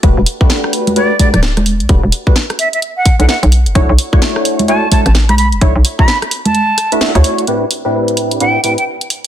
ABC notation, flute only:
X:1
M:4/4
L:1/16
Q:"Swing 16ths" 1/4=129
K:Bphr
V:1 name="Flute"
z8 d2 d d z4 | z6 e e z f2 f f z3 | z8 a2 a a z b b z | z3 b2 z2 a4 z4 z |
z8 g2 g g z4 |]